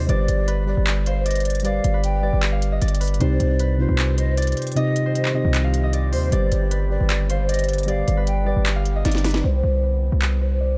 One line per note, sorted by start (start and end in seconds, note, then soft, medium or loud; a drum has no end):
0.00 0.11 C3 loud
0.00 0.11 C4 medium
0.00 0.11 D#4 medium
0.00 0.08 G4 loud
0.00 0.54 C5 medium
0.00 1.07 F5 medium
0.07 0.28 G1 loud
0.07 0.29 G3 loud
0.07 0.30 G4 medium
0.07 0.30 B4 medium
0.07 0.64 D5 loud
0.07 1.25 D5 loud
0.07 0.31 D5 loud
0.07 closed hi-hat medium
0.28 0.75 G1 loud
0.28 closed hi-hat medium
0.37 0.58 G3 medium
0.37 0.59 G4 medium
0.37 0.59 B4 medium
0.37 0.60 D5 medium
0.48 1.13 B4 medium
0.48 closed hi-hat medium
0.66 1.23 G3 medium
0.66 1.23 G4 medium
0.66 1.24 B4 medium
0.66 1.04 D5 medium
0.66 1.24 D5 medium
0.77 1.80 G1 loud
0.87 clap loud
0.87 closed hi-hat medium
1.06 2.00 C5 medium
1.06 1.25 F5 medium
1.06 closed hi-hat medium
1.26 1.64 D5 medium
1.26 1.44 D#5 medium
1.26 closed hi-hat medium
1.31 closed hi-hat medium
1.35 closed hi-hat medium
1.40 closed hi-hat soft
1.45 1.64 D5 medium
1.45 closed hi-hat medium
1.50 closed hi-hat medium
1.55 closed hi-hat medium
1.60 2.06 G3 loud
1.60 closed hi-hat medium
1.64 2.06 G4 medium
1.64 2.07 B4 medium
1.64 2.23 D5 medium
1.64 2.07 D5 loud
1.64 2.01 F5 medium
1.64 closed hi-hat medium
1.84 2.31 G1 loud
1.84 closed hi-hat medium
1.94 3.00 B4 medium
2.03 2.40 G5 medium
2.03 closed hi-hat medium
2.22 2.79 G3 medium
2.22 2.79 G4 medium
2.22 2.80 B4 medium
2.22 2.78 D5 medium
2.22 2.80 D5 medium
2.33 2.80 G1 loud
2.43 clap loud
2.43 closed hi-hat medium
2.52 4.19 F5 medium
2.62 closed hi-hat medium
2.72 2.87 D#5 medium
2.81 3.19 G1 loud
2.81 4.37 D5 medium
2.81 closed hi-hat medium
2.88 closed hi-hat medium
2.95 closed hi-hat medium
3.00 3.27 B4 medium
3.00 closed hi-hat medium
3.00 open hi-hat medium
3.08 closed hi-hat medium
3.14 closed hi-hat medium
3.19 3.39 C2 loud
3.19 3.41 C3 loud
3.19 6.29 D#3 medium
3.19 9.40 G3 medium
3.19 3.41 C4 medium
3.19 6.29 C4 medium
3.19 3.42 D#4 medium
3.19 9.40 G4 medium
3.19 3.42 G4 loud
3.19 3.66 C5 loud
3.19 3.75 D5 loud
3.19 closed hi-hat medium
3.40 3.87 C2 loud
3.40 closed hi-hat medium
3.48 3.70 C3 medium
3.48 3.70 C4 medium
3.48 3.71 D#4 medium
3.48 3.71 G4 medium
3.59 4.24 B4 medium
3.59 closed hi-hat medium
3.78 4.34 C3 medium
3.78 4.35 C4 medium
3.78 4.35 D#4 medium
3.78 4.36 F4 medium
3.78 4.16 C5 medium
3.89 4.54 C2 loud
3.98 clap loud
3.98 closed hi-hat medium
4.18 5.05 C5 medium
4.18 4.36 D#5 medium
4.18 closed hi-hat medium
4.37 4.82 D5 medium
4.37 4.56 D5 medium
4.37 closed hi-hat medium
4.42 closed hi-hat medium
4.47 closed hi-hat medium
4.52 closed hi-hat medium
4.57 4.75 C5 medium
4.57 closed hi-hat medium
4.62 closed hi-hat medium
4.67 closed hi-hat medium
4.72 5.18 C3 loud
4.72 closed hi-hat medium
4.76 5.18 C4 medium
4.76 5.19 D#4 medium
4.76 5.19 G4 loud
4.76 5.13 D#5 loud
4.76 5.34 D#5 loud
4.76 closed hi-hat medium
4.96 closed hi-hat medium
5.06 6.12 C5 medium
5.15 6.09 D#5 medium
5.15 closed hi-hat medium
5.25 clap medium
5.33 5.90 C3 medium
5.33 5.91 C4 medium
5.33 5.91 D#4 medium
5.33 5.92 G4 medium
5.33 5.83 D#5 medium
5.45 6.14 C2 loud
5.54 clap loud
5.54 closed hi-hat medium
5.64 7.31 F5 medium
5.74 closed hi-hat medium
5.83 5.99 D#5 medium
5.93 6.32 D5 medium
5.93 closed hi-hat medium
6.12 6.31 D#2 loud
6.12 6.77 C5 medium
6.12 6.31 C5 medium
6.12 open hi-hat medium
6.31 6.51 G1 loud
6.31 9.41 D3 medium
6.31 6.53 G3 loud
6.31 9.41 B3 medium
6.31 6.53 G4 medium
6.31 6.54 B4 loud
6.31 6.87 D5 loud
6.31 7.49 D5 loud
6.31 6.54 D5 loud
6.31 closed hi-hat medium
6.52 6.98 G1 loud
6.52 closed hi-hat medium
6.60 6.82 G3 medium
6.60 6.82 G4 medium
6.60 6.83 B4 medium
6.60 6.83 D5 medium
6.71 7.36 B4 medium
6.71 closed hi-hat medium
6.89 7.46 G3 medium
6.89 7.46 G4 medium
6.89 7.47 B4 medium
6.89 7.27 D5 medium
6.89 7.47 D5 medium
7.00 8.04 G1 loud
7.10 clap loud
7.10 closed hi-hat medium
7.30 8.23 C5 medium
7.30 7.48 F5 medium
7.30 closed hi-hat medium
7.49 7.88 D5 medium
7.49 7.68 D#5 medium
7.49 closed hi-hat medium
7.54 closed hi-hat medium
7.59 closed hi-hat medium
7.64 closed hi-hat soft
7.69 7.87 D5 medium
7.69 closed hi-hat medium
7.73 closed hi-hat medium
7.78 closed hi-hat medium
7.83 8.29 G3 loud
7.83 8.30 G4 medium
7.83 closed hi-hat medium
7.88 8.30 B4 medium
7.88 8.46 D5 medium
7.88 8.31 D5 loud
7.88 8.25 F5 medium
7.88 closed hi-hat medium
8.08 8.54 G1 loud
8.08 closed hi-hat medium
8.17 9.23 B4 medium
8.27 8.64 G5 medium
8.27 closed hi-hat medium
8.45 9.02 G3 medium
8.45 9.02 G4 medium
8.45 9.03 B4 medium
8.45 9.02 D5 medium
8.45 9.03 D5 medium
8.56 9.03 G1 loud
8.66 clap loud
8.66 closed hi-hat medium
8.76 10.42 F5 medium
8.86 closed hi-hat medium
8.96 9.11 D#5 medium
9.05 9.42 G1 loud
9.05 10.60 D5 medium
9.05 snare medium
9.05 closed hi-hat medium
9.11 snare medium
9.11 closed hi-hat medium
9.18 closed hi-hat medium
9.24 9.50 B4 medium
9.24 snare loud
9.24 closed hi-hat medium
9.24 open hi-hat medium
9.31 snare loud
9.31 closed hi-hat medium
9.37 closed hi-hat medium
9.44 9.63 C2 loud
9.44 9.89 C5 medium
9.63 10.10 C2 loud
9.83 10.47 B4 medium
10.12 10.78 C2 loud
10.22 clap loud
10.41 10.78 C5 medium
10.60 10.78 D5 medium